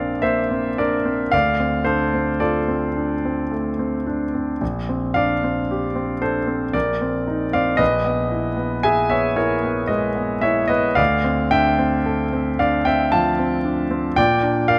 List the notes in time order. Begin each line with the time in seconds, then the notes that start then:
Already playing: A#1 C4 D4 A#4 D5 F5
0.22 A#3 C5 E5
0.51 C4
0.78 D4 A#4 D5
1.05 C4
1.32 D2 D5 F5
1.60 C4
1.84 D4 A4 C5
2.14 C4
2.40 F4 A4 D5
2.68 C4
2.96 D4
3.25 C4
3.51 A3
3.79 C4
4.07 D4
4.34 C4
4.61 A#1
4.89 C4
5.14 D4 D5 F5
5.44 C4
5.71 G4
5.96 C4
6.22 D4 A4 C5
6.47 C4
6.73 A#1 A#4 D5
7.01 C4
7.28 D#4
7.53 C4 D5 F5
7.77 A#1 B4 D#5
8.05 B3
8.31 E4
8.57 B3
8.83 G#4 E5 G#5
9.10 B3 C#5 E5
9.36 E4 A#4 C#5
9.63 B3
9.88 G#3 B4 D#5
10.15 B3
10.41 E4 C#5 E5
10.68 B3 B4 D#5
10.95 D2 D5 F5
11.24 C4
11.51 D4 E5 G5
11.79 C4
12.06 A4
12.33 C4
12.59 D4 D5 F5
12.85 C4 E5 G5
13.12 F3 F5 A5
13.39 C4
13.65 D4
13.91 C4
14.16 A#2 D5 G5
14.43 D4
14.68 A#4 D5 F5